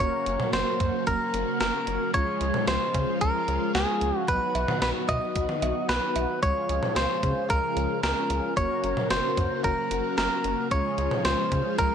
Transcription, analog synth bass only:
0.00 F#1
0.27 F#1
0.53 F#1
0.80 F#2
1.07 F#1
1.34 F#1
1.60 F#1
1.87 F#1
2.14 C#2
2.41 C#2
2.68 C#2
2.95 C#3
3.21 C#2
3.48 C#2
3.75 C#2
4.02 C#2
4.28 B1
4.55 B1
4.82 B1
5.09 B2
5.36 B1
5.62 B1
5.89 B1
6.16 B1
6.43 C#2
6.69 C#2
6.96 C#2
7.23 C#3
7.50 C#2
7.77 C#2
8.03 C#2
8.30 C#2
8.57 F#1
8.84 F#1
9.11 F#1
9.37 F#2
9.64 F#1
9.91 F#1
10.18 F#1
10.45 F#1
10.71 C#2
10.98 C#2
11.25 C#2
11.52 C#3
11.79 C#2

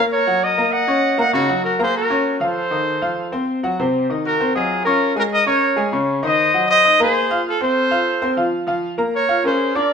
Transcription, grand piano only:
Already playing: A#3 A#4 A#5
0.27 F#3 F#4 F#5
0.58 A#3 A#4 A#5
0.87 C#4 C#5 C#6
1.18 A#3 A#4 A#5
1.33 C#3 C#4 C#5
1.49 F#3 F#4 F#5
1.79 A#3 A#4 A#5
2.10 C#4 C#5 C#6
2.40 F3 F4 F5
2.71 D#3 D#4 D#5
3.02 F3 F4 F5
3.32 C4 C5 C6
3.63 F#3 F#4 F#5
3.79 C3 C4 C5
4.10 D#3 D#4 D#5
4.40 C4 C5 C6
4.55 F#3 G#4 D#5
4.86 C#4 C#5 C#6
5.16 G#3 G#4 G#5
5.46 C#4 C#5 C#6
5.76 G#3 G#4 G#5
5.92 C#3 C#4 C#5
6.23 D#3 D#4 D#5
6.54 F#3 F#4 F#5
6.85 D#4 D#5 D#6
7.00 A#3 A#4 A#5
7.30 F4 F5 F6
7.61 C4 C5 C6
7.91 F4 F5 F6
8.22 C4 C5 C6
8.37 F3 F4 F5
8.67 F3 F4 F5
8.98 A#3 A#4 A#5
9.28 F4 F5 F6
9.44 C#4 A#4
9.75 D4 D5 D6

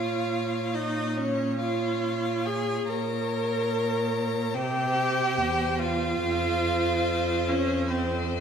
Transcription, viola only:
Already playing: F4
0.75 D#4
1.18 C#4
1.60 F4
2.46 G#4
2.89 A#4
4.55 G4
5.79 F4
7.49 C#4
7.90 C4

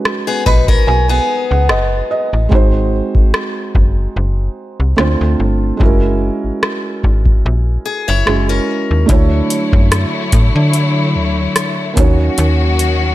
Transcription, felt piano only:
Already playing: G#3 C#4 D#4 F#4 B4
0.46 B5
0.87 G#5
1.09 G#5
1.51 F#5
1.69 D#5
2.11 D#5
2.49 G#3 C4 D#4
2.53 F#4 C5
4.97 A3 C4 D4 F4 C5
5.77 G#3 C#4 E4
5.82 F#4 A#4
8.25 G#3 C#4 E4 F#4 G#4
9.06 A3 D4 E4
9.10 F#4 C#5
11.94 A#3 C#4 D#4
11.98 F#4 C#5

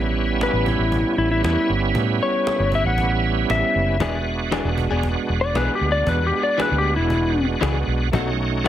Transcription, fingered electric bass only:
Already playing: A1
0.53 A1
0.79 A1
1.18 A1
1.44 E2
1.57 muted fingered electric bass stroke
1.69 G1
1.95 A2
2.60 G1
2.85 A1
3.50 A1
3.75 F#1
4.00 E1
4.65 E1
4.91 E1
5.29 E1
5.55 B1
5.69 muted fingered electric bass stroke
5.81 D2
6.07 E2
6.71 D2
6.97 E1
7.62 C#2
7.87 B1
8.13 B1

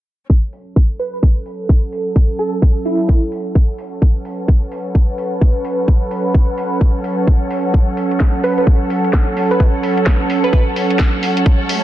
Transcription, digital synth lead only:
0.99 B4
1.13 B4
2.39 A4
2.85 E4
8.44 B4
8.58 B4
9.51 B4
10.44 B4
10.53 B4

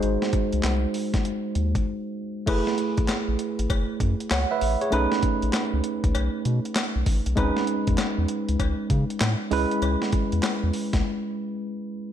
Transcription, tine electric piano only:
Already playing: G#3 D#4 F#4 C5
2.46 A3 E4 G#4 B4
4.31 C#5 F#5
4.51 B4 E5
4.81 G#4 C#5
4.91 A3 C#4 D#4 B4
7.36 G#3 C4 D#4 B4
7.43 C#4
9.51 G#3 C#4 E4 B4

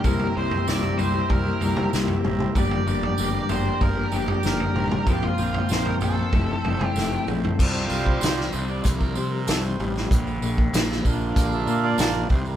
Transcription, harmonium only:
0.06 G4 C5 E5 A#5
2.57 D5 G5 A#5
5.09 A#3 C5 C6
6.32 A4 E5
7.57 G3 C4 F4
7.88 A#4
8.04 C5
8.37 D5
8.52 C5
8.69 D5
8.83 C5
8.99 A#4
9.15 C5
9.30 A#4
9.46 A4
9.61 C5
11.05 A#3 D4 F4
11.37 D5
11.54 E5
11.68 E5
11.84 D5
12.29 C5
12.47 A#4

